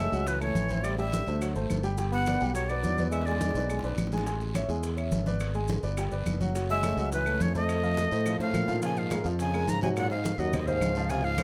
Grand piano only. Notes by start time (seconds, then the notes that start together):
0.00 C#5
0.12 F#3 F#4 F#5
0.41 A3 A4 C#5
0.70 C4 C5 E5
0.98 G3 G4 G5
1.28 A3 A4 C5
1.41 F#3 F#4 F#5
1.55 A3 A4 C5
1.83 G3 G4 G5
1.98 G3 G4 G5
2.27 B3 B4 D5
2.41 G3 G4 G5
2.70 B3 B4 D5
3.00 B3 B4 D5
3.28 G#3 G#4 G#5
3.56 B3 B4 D5
3.70 G#3 G#4 G#5
3.84 B3 B4 D5
4.13 G#3 G#4 G#5
4.26 G#3 G#4 G#5
4.55 C#4 C#5 E5
4.70 G#3 G#4 G#5
4.97 C#4 C#5 E5
5.26 B3 B4 D5
5.55 G#3 G#4 G#5
5.83 B3 B4 D5
5.98 G3 G4 G5
6.12 B3 B4 D5
6.40 F#3 F#4 F#5
6.55 F#3 F#4 F#5
6.83 A3 A4 C#5
6.98 F#3 F#4 F#5
7.26 A3 A4 C#5
7.55 A3 A4 C5
7.83 F3 F4 F5
8.12 A3 A4 C5
8.26 F3 F4 F5
8.40 A3 A4 C5
8.68 F3 F4 F5
8.82 F3 F4 F5
9.11 G#3 G#4 A#4
9.25 F3 F4 F5
9.54 G#3 G#4 A#4
9.82 F#3 F#4 F#5
10.10 C4 C5 D#5
10.39 F#3 F#4 F#5
10.53 C4 C5 D#5
10.68 C4 C5 D#5
10.97 F3 F4 F5
11.10 F3 F4 F5
11.39 G#3 G#4 C5